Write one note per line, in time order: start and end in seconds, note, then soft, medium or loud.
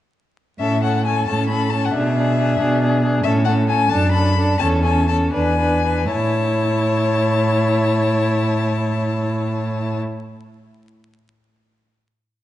0.60 1.19 A2 medium
0.60 0.82 C#4 soft
0.60 0.83 A4 soft
0.60 0.81 E5 medium
0.83 1.04 C#4 soft
0.83 1.05 A4 soft
0.83 1.05 F#5 medium
1.05 1.26 C#4 soft
1.05 1.28 A4 soft
1.05 1.26 G#5 medium
1.26 1.86 A2 soft
1.26 1.49 C#4 soft
1.26 1.50 A4 soft
1.26 1.48 A5 medium
1.49 1.70 C#4 soft
1.49 1.72 A4 soft
1.49 1.71 B5 medium
1.70 1.92 C#4 soft
1.70 1.93 A4 soft
1.70 1.86 A5 medium
1.85 1.93 F#5 soft
1.91 2.51 B2 medium
1.91 2.14 D4 soft
1.91 2.16 G#4 soft
1.91 3.01 E5 medium
2.15 2.36 D4 soft
2.15 2.37 G#4 soft
2.37 2.58 D4 soft
2.37 2.58 G#4 soft
2.59 3.16 B2 medium
2.59 2.80 D4 soft
2.59 2.80 G#4 soft
2.81 3.02 D4 soft
2.81 3.02 G#4 medium
3.02 3.24 D4 soft
3.02 3.24 G#4 soft
3.24 3.83 A2 medium
3.24 3.46 C#4 medium
3.24 3.46 A4 medium
3.24 3.32 E5 medium
3.45 3.68 C#4 soft
3.45 3.68 A4 soft
3.45 3.53 F#5 medium
3.68 3.91 C#4 soft
3.68 3.90 A4 medium
3.68 3.91 G#5 medium
3.89 4.52 F#2 medium
3.89 4.13 D4 medium
3.89 4.12 A4 soft
3.89 4.11 A5 medium
4.11 4.37 D4 soft
4.11 4.36 A4 medium
4.11 4.58 B5 medium
4.37 4.60 D4 soft
4.37 4.60 A4 soft
4.59 5.25 E2 medium
4.59 4.84 C#4 medium
4.59 4.84 A4 medium
4.59 4.67 A5 medium
4.83 5.08 C#4 soft
4.83 5.08 A4 soft
4.83 5.08 G#5 medium
5.08 5.32 C#4 soft
5.08 5.33 A4 soft
5.08 5.16 A5 medium
5.33 6.02 E2 medium
5.33 5.58 D4 medium
5.33 5.58 B4 soft
5.33 6.09 G#5 medium
5.58 5.84 D4 soft
5.58 5.84 B4 soft
5.84 6.10 D4 soft
5.84 6.10 B4 soft
6.11 9.98 A2 medium
6.11 9.97 E4 medium
6.11 9.97 C#5 medium
6.11 9.98 A5 medium